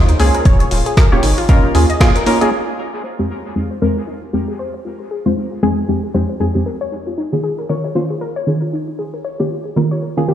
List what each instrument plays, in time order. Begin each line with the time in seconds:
Already playing: analog synth bass D#2
0.09 synth pluck D#4, closed hi-hat
0.19 analog synth bass C#2, synth stab A#3 C#4 F4 G#4, synth pluck G#4, open hi-hat
0.34 synth pluck A#4, closed hi-hat
0.45 analog synth bass D#1, synth pluck C#5, kick, closed hi-hat
0.60 synth pluck C#5, closed hi-hat
0.71 analog synth bass D#1, synth pluck F4, open hi-hat
0.86 synth pluck G#4, closed hi-hat
0.97 synth pluck A#4, kick, snare, closed hi-hat
1.12 analog synth bass D#1, synth stab A#3 C#4 F4 G4, synth pluck C#5
1.23 analog synth bass G#1, synth pluck D#4, open hi-hat
1.38 synth pluck F4, open hi-hat
1.49 synth stab A#3 C#4 F4 A#4, synth pluck D#4, kick, closed hi-hat
1.64 synth pluck D#4
1.75 analog synth bass D#2, synth stab A#3 C#4 F4 G#4, synth pluck G#4, open hi-hat
1.90 synth pluck D#5, closed hi-hat
2.00 synth stab A#3 C#4 F4 G#4, synth pluck G#4, kick, snare, closed hi-hat
2.15 synth pluck A#4, closed hi-hat
2.26 synth stab A#3 C#4 F4 A#4, synth pluck D#4, open hi-hat
2.41 synth stab A#3 C#4 F4 G#4, synth pluck D#5, closed hi-hat
2.52 synth pluck D#4
2.67 synth pluck D#4
2.78 synth pluck G4
2.93 synth pluck G#4
3.04 synth pluck C5
3.19 synth stab F2 G#3 C4 D#4 G4, synth pluck C5
3.30 synth pluck F4
3.45 synth pluck G4
3.56 synth stab F2 G#3 C4 D#4 G#4, synth pluck G#4
3.71 synth pluck C5
3.82 synth stab F2 G#3 C4 D#4 A#4, synth pluck D#4
3.97 synth pluck F4
4.07 synth pluck D#4
4.22 synth pluck D#4
4.33 synth stab F2 G#3 C4 D#4 G4, synth pluck G4
4.48 synth pluck G#4
4.59 synth pluck C5
4.74 synth pluck C5
4.85 synth pluck F4
5.00 synth pluck G4
5.11 synth pluck G#4
5.26 synth stab F2 G#3 C4 D#4 F4, synth pluck C5
5.37 synth pluck D#4
5.52 synth pluck F4
5.62 synth stab F2 G#3 C4 D#4 G#4, synth pluck D#4
5.78 synth pluck D#4
5.88 synth stab F2 G#3 C4 D#4 G4, synth pluck G4
6.03 synth pluck G#4
6.14 synth stab F2 G#3 C4 D#4 G4, synth pluck C5
6.29 synth pluck C5
6.40 synth stab F2 G#3 C4 D#4 G#4, synth pluck F4
6.55 synth stab F2 G#3 C4 D#4 G4, synth pluck G4
6.66 synth pluck A#4
6.81 synth pluck C#5
6.92 synth pluck D#4
7.07 synth pluck F4
7.18 synth pluck D#4
7.33 synth stab D#3 A#3 C#4 F4 G#4, synth pluck D#4
7.44 synth pluck G#4
7.59 synth pluck A#4
7.69 synth stab D#3 A#3 C#4 F4 A#4, synth pluck C#5
7.84 synth pluck C#5
7.95 synth stab D#3 A#3 C#4 F4 C5, synth pluck F4
8.10 synth pluck G#4
8.21 synth pluck A#4
8.36 synth pluck C#5
8.47 synth stab D#3 A#3 C#4 F4 G#4, synth pluck D#4
8.62 synth pluck F4
8.73 synth pluck D#4
8.88 synth pluck D#4
8.99 synth pluck G#4
9.14 synth pluck A#4
9.25 synth pluck C#5
9.40 synth stab D#3 A#3 C#4 F4 G4, synth pluck C#5
9.50 synth pluck F4
9.65 synth pluck G#4
9.76 synth stab D#3 A#3 C#4 F4 A#4, synth pluck A#4
9.91 synth pluck C#5
10.02 synth pluck A#4
10.17 synth stab D#3 A#3 C#4 F4 G#4, synth pluck A#4
10.28 synth stab D#3 A#3 C#4 F4 G4, synth pluck A#4